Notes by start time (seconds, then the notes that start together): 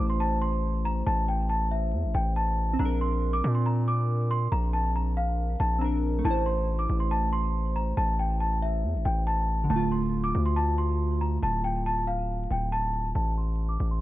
Already playing: A3 E4 C5
0.00 A1
0.10 C6
0.20 A5
0.42 C6
0.85 A#5
1.07 A1 A5
1.28 G5
1.49 A5
1.71 E5
1.93 E2
2.04 A1
2.15 A1 G5
2.36 A5
2.73 C4
2.79 A#1 D4 A#5
2.85 A#4
3.01 C6
3.33 D6
3.44 A#2
3.55 C6
3.66 A#5
3.88 D6
4.31 C6
4.52 A#1 A#5
4.73 A5
4.96 A#5
5.17 F5
5.60 A#1 A5
5.78 C4 D4 A#5
5.84 A#4
6.19 A3
6.25 A1 E4 A5
6.31 C5
6.46 C6
6.79 D6
6.89 A1
7.00 C6
7.11 A5
7.33 C6
7.76 A#5
7.97 A1 A5
8.19 G5
8.40 A5
8.62 E5
8.84 E2
8.94 A1
9.05 A1 G5
9.27 A5
9.64 D3
9.70 D1 A3 A5
9.76 F4
9.92 C6
10.24 D6
10.35 D2
10.46 C6
10.56 A5
10.78 C6
11.21 A#5
11.43 D1 A5
11.64 G5
11.86 A5
12.07 F5
12.51 D1 G5
12.72 A5
13.15 A1 A5
13.38 C6
13.69 D6
13.80 A1
13.91 C6